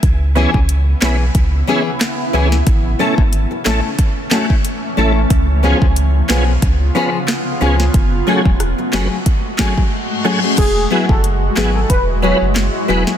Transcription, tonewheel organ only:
X:1
M:4/4
L:1/8
Q:"Swing 16ths" 1/4=91
K:C#m
V:1 name="Tonewheel organ"
z [B,CEG] z [B,CEB] z [B,CEG] z [B,CEG] | z [A,CEA] z [A,CEA] z [A,CEF] z [A,CEA] | z [B,C^EG] z [B,CEG] z [B,CEB] z [B,CEG] | z [A,CFG] z [A,CFB] z [A,CFG] z [A,CFG] |
z [B,EFG] z [B,EFG] z [B,EFB] z [B,EFB] |]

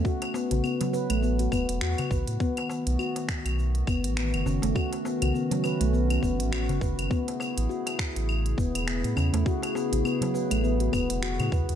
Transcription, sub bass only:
X:1
M:4/4
L:1/16
Q:"Swing 16ths" 1/4=102
K:Alyd
V:1 name="Sub bass" clef=bass
z3 A,,, z3 A,,,3 E,,, E,,, E,, z A,,, A,, | z3 B,,, z3 B,,,3 F,,, A,,,2 F,,, F,,, F,,, | z3 B,,, z3 B,,,3 F,,, A,,,2 F,,, F,,, F,,, | z3 A,,, z3 A,,,3 E,,, E,,,2 A,, E,, E,, |
z3 A,,, z3 A,,,3 E,,, E,,,2 A,, E,, E,, |]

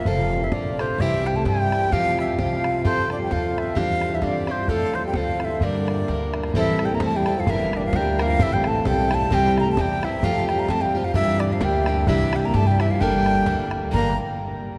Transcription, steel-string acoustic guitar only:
X:1
M:2/4
L:1/8
Q:"Swing" 1/4=130
K:Gdor
V:1 name="Steel-string acoustic guitar"
[F,CFA]2 [F,CFA] [CFA] | [C,G,CEG]2 [G,CEG] [CEG] | [F,A,CFG]2 [A,CFG]2 | [F,CFA]2 [F,CFA]2 |
[G,CDG]2 [G,CDG] [CDG] | [F,CFA]2 [F,CFA]2 | [G,,D,G,B,DB]2 [G,B,DB]2 | [A,,E,G,CEA]2 [G,CEA] [G,CEA] |
[G,,D,G,B,DB]2 [G,B,DB] [G,B,DB] | [A,,E,A,CEA]2 [A,CEA] [A,CEA] | [C,G,CEG]2 [G,CEG] [CEG] | [F,A,CFG]2 [A,CFG] [CFG] |
[G,,D,G,B,DG]2 [G,B,DG] [G,B,DG] | [C,G,DEG]2 [G,DEG] [DEG] | [G,,D,G,B,DA]2 [G,B,DA]2 | [G,,D,G,B,DA] z3 |]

